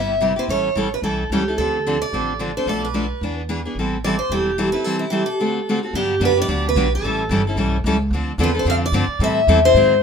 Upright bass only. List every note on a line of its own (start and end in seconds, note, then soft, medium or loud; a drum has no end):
0.00 0.37 G1 medium
0.48 0.70 A1 medium
0.76 0.99 A1 medium
1.02 1.26 B1 medium
1.30 1.53 C#2 medium
1.58 2.01 D2 medium
2.13 2.56 A1 medium
2.66 3.10 B1 medium
3.21 3.65 E2 medium
3.75 4.19 A1 medium
4.29 4.74 E1 medium
5.93 6.19 G2 medium
6.20 6.47 F#2 medium
6.48 6.75 D2 medium
6.75 7.01 B1 medium
7.02 7.29 A1 medium
7.29 7.56 G1 medium
7.56 7.83 B1 medium
7.84 8.10 C#2 medium
8.11 8.37 D2 medium
8.38 8.64 E2 medium
8.65 8.91 F2 medium
8.92 9.07 G2 medium
9.08 muted upright bass stroke soft
9.19 9.46 A2 medium
9.47 9.74 E2 medium
9.74 10.01 G#2 medium